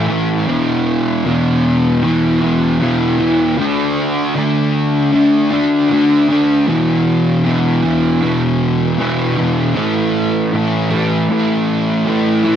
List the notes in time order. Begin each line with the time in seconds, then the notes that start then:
Already playing: A2
0.07 E3 A3
0.47 E2 B2 E3
1.24 E2 B2 E3
2.02 E2 B2 E3
2.41 B2 E3
2.80 E2 B2 E3
3.19 B2 E3
3.57 D3 A3 D4
4.35 D3 A3 D4
5.12 D3 A3 D4
5.51 A3 D4
5.89 D3 A3 D4
6.28 A3 D4
6.67 E2 B2 E3
7.44 E2 B2 E3
7.82 B2 E3
8.21 E2 B2 E3
8.98 E2 B2 E3
9.37 B2 E3
9.75 A2 E3 A3
10.52 A2 E3 A3
10.90 E3 A3
11.29 A2 E3 A3
12.06 A2 E3 A3
12.44 E3 A3